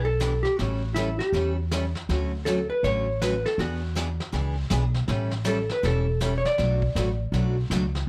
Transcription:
Already playing: B1
0.05 A4
0.20 E3 B3 D4 G4, snare, hi-hat pedal
0.43 G4, snare
0.57 A1 E3 G3 C#4 E4 F#4, brush sweep, snare
0.61 A4
0.94 E3 G3 C#4 E4 A4, snare, hi-hat pedal
1.19 G4, snare
1.33 E2 E3 G3 C#4 E4 A4, brush sweep, snare
1.54 F#4
1.71 E3 G3 C#4 E4 A4, snare, hi-hat pedal
1.95 snare
2.09 D2 D3 F#3 A3 C#4 F#4, brush sweep, snare
2.45 D3 F#3 A3 C#4 F#4 A4, snare, hi-hat pedal
2.70 B4
2.83 A1 D3 F#3 A3 C#4 F#4 C#5, brush sweep, snare
3.22 D3 F#3 A3 C#4 F#4 B4, snare, hi-hat pedal
3.46 A4, snare
3.58 E2 E3 B3 D4 F#4 G#4, brush sweep, snare
3.95 E3 B3 D4 G#4, snare, hi-hat pedal
4.20 snare
4.32 C#2 E3 B3 D4 G#4, brush sweep, snare
4.70 B1 E3 B3 D4 G#4, snare, hi-hat pedal
4.94 snare
5.08 A1 E3 G3 C#4 E4 A4, brush sweep, snare
5.31 snare
5.45 E3 G3 C#4 E4 A4, snare, hi-hat pedal
5.69 B4, snare
5.83 E1 E3 G3 C#4 E4 A4, brush sweep, snare
6.20 E3 G3 C#4 E4 A4, snare, hi-hat pedal
6.38 C#5
6.45 D5, snare
6.58 B1 B2 F#3 A3 D4 F#4, brush sweep, snare
6.82 kick
6.95 A1 B2 F#3 A3 D4 F#4, snare, hi-hat pedal
7.32 B1 B2 F#3 A3 D4 F#4, brush sweep, snare
7.70 C#2 B2 F#3 A3 D4 F#4, snare, hi-hat pedal
7.95 snare

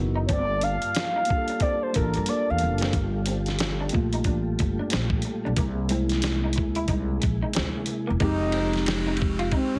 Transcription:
Already playing: C#3 E3 B3 D#4 E4 F#4 A#4
0.00 F#1
0.16 D#4
0.26 G3 A#3 C4 F4 C#5 A5, kick, closed hi-hat
0.30 G1 D5
0.61 D4 F5, closed hi-hat
0.82 closed hi-hat
0.95 snare, closed hi-hat
1.16 D#4
1.25 A#3 D4, closed hi-hat
1.29 F4 G4, muted clean electric guitar stroke, kick
1.37 A4
1.48 D4, closed hi-hat
1.60 C4 D5, kick, closed hi-hat
1.83 C5
1.93 A1 A#3 D4 F4 A4 A#4, muted clean electric guitar stroke, kick, closed hi-hat
2.04 A#4
2.14 G2 A#3, closed hi-hat
2.26 A#3 D5, closed hi-hat
2.50 E2 F5
2.58 muted clean electric guitar stroke, closed hi-hat
2.63 F#1
2.78 C4, closed hi-hat
2.82 snare
2.93 G1 G3 A#3 F4 G4 A4, kick, closed hi-hat
3.26 C4, closed hi-hat
3.46 snare, closed hi-hat
3.59 snare, closed hi-hat
3.80 D4
3.89 A3 A#3, muted clean electric guitar stroke, closed hi-hat
3.94 A#1 F4, kick
4.13 D#4, closed hi-hat
4.24 A1 D4, kick, closed hi-hat
4.59 G1, muted clean electric guitar stroke, kick, closed hi-hat
4.79 D4
4.90 A#1 C4, snare, closed hi-hat
5.10 kick
5.22 muted clean electric guitar stroke, closed hi-hat
5.45 B1 D4
5.57 C2 C3 A#3 E4 G#4, kick, closed hi-hat
5.89 G#3 A#3 C4 E4, closed hi-hat
6.09 snare, closed hi-hat
6.22 snare, closed hi-hat
6.44 D#4
6.53 muted clean electric guitar stroke, closed hi-hat
6.58 D2, kick
6.75 E4, closed hi-hat
6.88 C2 D#4, kick, closed hi-hat
7.22 A#1, muted clean electric guitar stroke, kick, closed hi-hat
7.43 D#4
7.53 D2 C4, snare, closed hi-hat
7.86 muted clean electric guitar stroke, closed hi-hat
8.07 E1 A#3
8.20 F1 G#3 A#3 C4 D#4, kick, ride
8.24 G4
8.52 C4, ride
8.73 snare, ride
8.86 snare, ride
9.07 D#4
9.17 muted clean electric guitar stroke, ride
9.22 kick
9.39 F4, ride
9.52 C4 D#4, muted upright bass stroke, kick, ride
9.75 C2 C#4

